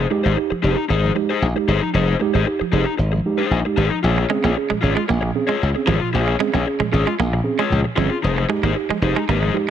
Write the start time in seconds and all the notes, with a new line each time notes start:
0.10 G#3 D#4 G4, muted overdriven electric guitar stroke
0.24 G#1 D#4 G4 G#4 C5
0.37 D#4 G4, muted overdriven electric guitar stroke
0.50 F3, muted overdriven electric guitar stroke, muted slap bass stroke
0.62 F1 D#4 G4 G#4 C5
0.77 muted overdriven electric guitar stroke
0.89 G#1 D#4 G4 G#4 C5
1.04 F3
1.15 G#3 D#4 G4, muted overdriven electric guitar stroke
1.29 D#4 G#4 C5
1.42 A#1
1.55 G#3 D#4 G4, muted overdriven electric guitar stroke
1.68 G1 D#4 G#4 C5
1.82 F3, muted overdriven electric guitar stroke
1.94 F1 F3 D#4 G#4 C5
2.20 G#3 D#4 G4, muted overdriven electric guitar stroke
2.34 G#1 D#4 G4 G#4 C5
2.46 D#4 G4, muted overdriven electric guitar stroke
2.59 F3, muted overdriven electric guitar stroke, muted slap bass stroke
2.72 F1 D#4 G4 G#4 C5
2.86 muted overdriven electric guitar stroke
2.97 G#1 D#4 G4, muted overdriven electric guitar stroke
3.12 F3, muted overdriven electric guitar stroke
3.26 G#3 D#4 G4
3.38 D#4 G#4 C5
3.51 A#1
3.65 G#3 D#4 G4, muted overdriven electric guitar stroke
3.76 G#1 D#4 G#4 C5
3.91 F3, muted overdriven electric guitar stroke
4.03 A#1 A#2 F3 F4 G#4 C#5
4.18 muted clean electric guitar stroke
4.29 G#3 C4 C#4 G#4, muted overdriven electric guitar stroke
4.44 A#1 A#3 C#4 F4 G#4 C#5
4.56 C#4 G#4, muted overdriven electric guitar stroke
4.70 A#2 F3 G#3, muted overdriven electric guitar stroke, muted slap bass stroke
4.81 G#1 C#4 F4 G#4 C#5, muted clean electric guitar stroke
4.96 G#3, muted overdriven electric guitar stroke
5.08 A#1 A#3 C#4 G#4, muted overdriven electric guitar stroke
5.21 A#2 F3, muted overdriven electric guitar stroke, muted clean electric guitar stroke
5.35 C4 C#4 G#4
5.47 G#3 F4 G#4 C#5
5.63 C#2
5.75 C4 C#4 G#4, muted overdriven electric guitar stroke
5.86 G#1 F3 F4 G#4 C#5
6.00 A#2 F3, muted overdriven electric guitar stroke
6.13 A#1 A#2 F3 F4 G#4 C#5
6.28 muted clean electric guitar stroke
6.40 G#3 C4 C#4 G#4, muted overdriven electric guitar stroke
6.53 A#1 A#3 C#4 F4 G#4 C#5
6.65 C#4 G#4, muted overdriven electric guitar stroke
6.80 A#2 F3 G#3, muted overdriven electric guitar stroke, muted slap bass stroke
6.92 G#1 C#4 F4 G#4 C#5, muted clean electric guitar stroke
7.07 G#3, muted overdriven electric guitar stroke
7.18 A#1 A#3 C#4 G#4, muted overdriven electric guitar stroke
7.32 A#2 F3, muted clean electric guitar stroke, muted overdriven electric guitar stroke
7.44 C4 C#4 G#4
7.59 G#3 F4 G#4 C#5
7.70 C#2 A#2 F3
7.84 muted overdriven electric guitar stroke
7.96 G1 F3 C4 C#4 F4 G#4 C#5
8.10 C#4 G#4, muted overdriven electric guitar stroke
8.23 F1 F3 D#4 G#4 C5
8.38 muted clean electric guitar stroke
8.49 G#3 D#4 G4, muted overdriven electric guitar stroke
8.63 G#1 A#3 D#4 G4 G#4 C5
8.75 D#4 G4, muted overdriven electric guitar stroke
8.89 F3 G#3, muted overdriven electric guitar stroke, muted slap bass stroke
9.02 F1 D#4 G4 G#4 C5, muted clean electric guitar stroke
9.16 G#3, muted overdriven electric guitar stroke
9.28 G#1 A#3 D#4 G4 G#4 C5
9.42 F3, muted clean electric guitar stroke
9.54 G#3 D#4 G4, muted overdriven electric guitar stroke